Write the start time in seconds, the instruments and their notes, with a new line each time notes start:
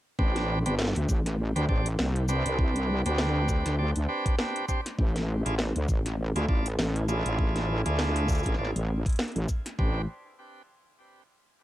0.19 wobble bass A1, tonewheel organ C4 D4 G4 B4, kick
0.36 snare, closed hi-hat
0.66 wobble bass G1, tonewheel organ C4 D4 G4 B4, closed hi-hat
0.79 snare
0.82 snare
0.84 snare
0.88 snare
0.93 wobble bass D2, snare, closed hi-hat
1.09 wobble bass A1, kick, shaker
1.26 snare, closed hi-hat
1.56 wobble bass D2, tonewheel organ C4 D4 G4 B4, closed hi-hat
1.69 wobble bass A1, tonewheel organ C4 D4 G4 D5, kick
1.86 closed hi-hat
1.99 wobble bass C2, snare
2.16 closed hi-hat
2.29 tonewheel organ C4 D4 G4 B4, shaker
2.46 wobble bass C2, closed hi-hat
2.59 kick
2.76 closed hi-hat
3.06 wobble bass D2, tonewheel organ C4 D4 G4 B4, closed hi-hat
3.18 snare
3.49 kick, shaker
3.66 wobble bass D2, snare, closed hi-hat
3.79 tonewheel organ C4 D4 G4 D5
3.96 wobble bass D2, closed hi-hat
4.09 tonewheel organ C4 D4 G4 B4
4.26 kick, closed hi-hat
4.39 tonewheel organ C4 D4 G4 B4, snare
4.56 closed hi-hat
4.68 tonewheel organ C4 D4 G4 C5, kick, shaker
4.86 snare, closed hi-hat
4.98 wobble bass A1, kick
5.16 snare, closed hi-hat
5.46 wobble bass A1, tonewheel organ D4 E4 F4 G#4, closed hi-hat
5.59 snare
5.76 wobble bass D2, closed hi-hat
5.89 wobble bass A1, kick, shaker
6.06 snare, closed hi-hat
6.36 wobble bass D2, tonewheel organ D4 E4 F4 G#4, closed hi-hat
6.49 wobble bass A1, tonewheel organ D4 E4 F4 D5, kick
6.66 closed hi-hat
6.78 wobble bass A1, snare
6.96 closed hi-hat
7.08 tonewheel organ D4 E4 F4 G#4, shaker
7.26 wobble bass A1, closed hi-hat
7.39 kick
7.56 snare, closed hi-hat
7.86 wobble bass D2, tonewheel organ D4 E4 F4 G#4, closed hi-hat
7.99 snare
8.16 closed hi-hat
8.29 kick, shaker
8.32 shaker
8.35 shaker
8.38 shaker
8.39 shaker
8.43 wobble bass A1, kick, snare, closed hi-hat, shaker
8.55 wobble bass A1, tonewheel organ D4 E4 F4 D5, snare
8.65 snare
8.76 wobble bass A1, closed hi-hat
9.06 kick, closed hi-hat
9.09 closed hi-hat
9.12 closed hi-hat
9.19 snare, closed hi-hat
9.23 closed hi-hat
9.28 closed hi-hat
9.32 closed hi-hat
9.36 wobble bass A1, closed hi-hat
9.49 kick, shaker
9.66 snare, closed hi-hat
9.79 wobble bass A1, tonewheel organ C4 D4 G4 B4, kick